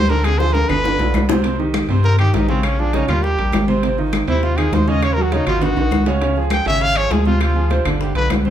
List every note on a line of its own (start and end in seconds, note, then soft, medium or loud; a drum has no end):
0.00 0.64 D2 medium
0.00 0.11 D#3 medium
0.00 0.11 C5 loud
0.09 0.26 D3 medium
0.09 0.35 D3 medium
0.09 0.35 D4 medium
0.09 0.26 A#4 medium
0.09 0.35 D5 medium
0.09 high bongo soft
0.09 high conga medium
0.24 0.41 C3 medium
0.24 0.40 G#4 medium
0.24 high bongo medium
0.24 high conga soft
0.24 high timbale loud
0.24 claves medium
0.38 0.55 E3 medium
0.38 0.64 F3 medium
0.38 0.65 F4 medium
0.38 0.65 G#4 medium
0.38 0.55 C5 medium
0.38 high bongo medium
0.38 high conga soft
0.53 0.69 D3 medium
0.53 0.70 A#4 medium
0.53 high conga medium
0.53 high timbale medium
0.68 0.97 G1 medium
0.68 0.82 B2 medium
0.68 1.29 D3 medium
0.68 0.82 B3 medium
0.68 1.29 B4 loud
0.68 0.82 B4 medium
0.68 low conga medium
0.68 high timbale medium
0.68 claves medium
0.84 0.97 D3 medium
0.84 0.97 D4 medium
0.84 0.97 F4 medium
0.84 low bongo loud
0.84 high conga soft
0.84 high timbale medium
0.99 1.13 B1 medium
0.99 1.24 D3 medium
0.99 1.24 D4 medium
0.99 1.24 F4 medium
0.99 low bongo medium
0.99 high conga soft
0.99 low timbale loud
1.14 1.84 C2 medium
1.14 low bongo medium
1.14 high conga loud
1.14 low timbale loud
1.14 claves medium
1.29 1.42 C3 medium
1.29 1.42 C4 medium
1.29 1.42 C5 medium
1.29 low bongo loud
1.29 high conga medium
1.29 low timbale loud
1.44 1.57 C3 medium
1.44 1.57 C4 medium
1.44 1.57 C5 medium
1.44 high bongo medium
1.44 high conga soft
1.44 high timbale medium
1.59 1.83 D#3 medium
1.59 1.84 D#4 medium
1.59 1.84 G4 medium
1.59 high bongo soft
1.59 high conga soft
1.74 high bongo medium
1.74 high conga loud
1.74 high timbale medium
1.74 low timbale medium
1.74 claves medium
1.89 2.31 G2 medium
1.89 2.14 C3 medium
1.89 2.14 C4 medium
1.89 2.14 C5 medium
1.89 high bongo soft
1.89 high conga soft
1.89 high timbale medium
2.04 2.18 A#4 medium
2.04 high bongo medium
2.04 high conga soft
2.19 2.31 D#3 medium
2.19 2.32 D#4 medium
2.19 2.36 G4 medium
2.19 2.32 G4 medium
2.19 high conga soft
2.19 high timbale medium
2.19 claves medium
2.34 3.03 A#1 medium
2.34 2.46 D#3 medium
2.34 2.48 D#4 medium
2.34 2.46 D#4 medium
2.34 2.47 G4 medium
2.34 high bongo medium
2.34 low bongo medium
2.34 high conga medium
2.34 high timbale medium
2.34 low timbale medium
2.48 2.73 C#3 medium
2.48 2.66 C4 medium
2.48 2.73 C#4 medium
2.48 2.73 C#5 medium
2.48 high bongo soft
2.48 high conga medium
2.63 2.81 C#4 medium
2.63 high bongo medium
2.63 high conga soft
2.63 high timbale loud
2.63 claves medium
2.79 2.91 F3 medium
2.79 2.95 D4 medium
2.79 2.91 F4 medium
2.79 2.91 G#4 medium
2.79 high conga soft
2.93 3.06 C#3 medium
2.93 3.06 C#4 medium
2.93 3.08 D#4 medium
2.93 3.06 C#5 medium
2.93 high bongo medium
2.93 high conga medium
2.93 high timbale medium
2.93 low timbale medium
3.08 3.36 D#2 medium
3.08 3.33 G3 medium
3.08 3.24 F4 medium
3.08 3.33 G4 medium
3.08 3.33 A#4 medium
3.08 high bongo soft
3.08 low conga medium
3.08 high timbale medium
3.08 claves medium
3.23 3.68 G4 medium
3.23 high bongo medium
3.23 high conga soft
3.38 3.52 A#1 medium
3.38 3.63 G3 medium
3.38 3.63 G4 medium
3.38 3.63 A#4 medium
3.38 high bongo soft
3.38 high conga soft
3.38 high timbale medium
3.53 4.22 G#1 medium
3.53 high bongo medium
3.53 low bongo medium
3.53 high conga medium
3.53 high timbale loud
3.53 low timbale medium
3.53 claves medium
3.68 3.80 C3 medium
3.68 3.80 C4 medium
3.68 3.80 C5 medium
3.68 high bongo soft
3.68 high conga medium
3.83 3.95 C3 medium
3.83 3.96 C4 medium
3.83 3.96 C5 medium
3.83 high bongo medium
3.83 high conga soft
3.83 high timbale medium
3.98 4.22 D#3 medium
3.98 4.23 D#4 medium
3.98 4.23 F4 medium
3.98 high bongo soft
3.98 high conga soft
4.13 high bongo medium
4.13 high conga medium
4.13 high timbale loud
4.13 low timbale medium
4.13 claves medium
4.27 4.69 D#2 loud
4.27 4.52 C3 medium
4.27 4.52 C4 loud
4.27 4.45 E4 medium
4.27 4.52 C5 medium
4.27 high bongo soft
4.27 high conga soft
4.27 high timbale medium
4.43 4.59 F4 medium
4.43 high bongo medium
4.43 high conga soft
4.57 4.70 D#3 medium
4.57 4.70 D#4 medium
4.57 4.70 F4 medium
4.57 4.75 G#4 medium
4.57 high conga soft
4.57 high timbale loud
4.57 claves medium
4.72 5.41 D#2 medium
4.72 4.85 D#3 medium
4.72 4.85 D#4 medium
4.72 4.85 F4 medium
4.72 4.90 C5 medium
4.72 high bongo medium
4.72 low bongo medium
4.72 high conga medium
4.72 high timbale medium
4.72 low timbale medium
4.87 5.12 C#3 medium
4.87 5.12 C#4 medium
4.87 5.12 C#5 medium
4.87 5.05 D#5 medium
4.87 high bongo soft
4.87 high conga medium
5.02 5.15 C#5 medium
5.02 high bongo medium
5.02 high conga soft
5.02 high timbale loud
5.02 claves medium
5.14 5.29 F#3 medium
5.14 5.30 F#4 medium
5.14 5.24 A#4 medium
5.14 high conga soft
5.18 5.30 A#4 medium
5.22 5.35 F#4 medium
5.32 5.44 C#3 medium
5.32 5.45 C#4 medium
5.32 5.47 D#4 medium
5.32 5.45 C#5 medium
5.32 high bongo medium
5.32 high conga medium
5.32 high timbale medium
5.32 low timbale medium
5.47 5.75 G#1 medium
5.47 5.71 D#3 medium
5.47 5.72 D#4 medium
5.47 5.64 F4 medium
5.47 5.72 F#4 medium
5.47 low conga medium
5.47 high timbale medium
5.47 claves medium
5.61 6.22 F#4 medium
5.61 high bongo medium
5.61 high conga soft
5.61 low conga medium
5.61 high timbale medium
5.76 5.91 A#1 medium
5.76 6.01 D#3 medium
5.76 6.01 D#4 medium
5.76 6.02 F#4 medium
5.76 high bongo soft
5.76 high conga soft
5.76 high timbale loud
5.91 6.61 C#2 medium
5.91 high bongo medium
5.91 low bongo medium
5.91 high conga medium
5.91 claves medium
6.06 6.19 C#3 medium
6.06 6.19 C#4 medium
6.06 6.19 C#5 medium
6.06 high bongo soft
6.06 high conga medium
6.06 low timbale medium
6.21 6.34 C#3 medium
6.21 6.34 C#4 medium
6.21 6.34 C#5 medium
6.21 high bongo medium
6.21 high conga soft
6.21 high timbale medium
6.36 6.61 F3 medium
6.36 6.61 F4 medium
6.36 6.61 G#4 medium
6.36 high bongo soft
6.36 high conga soft
6.50 6.66 G5 medium
6.50 high bongo medium
6.50 high conga medium
6.50 high timbale medium
6.50 low timbale medium
6.50 claves medium
6.65 7.08 G#1 loud
6.65 6.91 C#3 medium
6.65 6.91 C#4 medium
6.65 6.91 C#5 medium
6.65 6.84 E5 loud
6.65 high bongo soft
6.65 high conga soft
6.65 high timbale medium
6.81 6.99 F5 loud
6.81 high bongo medium
6.81 high conga soft
6.95 7.08 F3 medium
6.95 7.09 F4 medium
6.95 7.09 G#4 medium
6.95 7.13 C#5 loud
6.95 high conga soft
6.95 high timbale loud
6.95 claves medium
7.11 7.80 D2 medium
7.11 7.24 F3 medium
7.11 7.24 F4 medium
7.11 7.26 G#4 medium
7.11 7.24 G#4 medium
7.11 high bongo medium
7.11 low bongo medium
7.11 high conga medium
7.11 high timbale medium
7.11 low timbale medium
7.25 7.50 C3 medium
7.25 7.51 C4 medium
7.25 7.40 F4 medium
7.25 7.51 C5 medium
7.25 high bongo soft
7.25 high conga medium
7.40 7.83 F4 medium
7.40 high bongo medium
7.40 high conga soft
7.40 high timbale loud
7.40 claves medium
7.55 7.68 F3 medium
7.55 7.68 F4 medium
7.55 7.68 G#4 medium
7.55 high conga soft
7.70 7.83 C3 medium
7.70 7.83 C4 medium
7.70 7.83 C5 medium
7.70 high bongo medium
7.70 high conga medium
7.70 high timbale medium
7.70 low timbale medium
7.85 8.13 G1 loud
7.85 8.10 D3 medium
7.85 8.10 D4 medium
7.85 8.10 F4 medium
7.85 high bongo soft
7.85 low conga medium
7.85 high timbale medium
7.85 claves medium
8.01 8.15 G4 medium
8.01 high bongo medium
8.01 high conga soft
8.15 8.29 B1 medium
8.15 8.40 D3 medium
8.15 8.40 D4 medium
8.15 8.40 F4 medium
8.15 8.29 B4 loud
8.15 high bongo soft
8.15 high conga soft
8.15 high timbale medium
8.30 8.50 C2 medium
8.30 high bongo medium
8.30 low bongo medium
8.30 high conga medium
8.30 high timbale medium
8.30 low timbale medium
8.30 claves medium
8.45 8.50 C3 medium
8.45 8.50 C4 medium
8.45 8.50 C5 medium
8.45 high bongo soft
8.45 high conga medium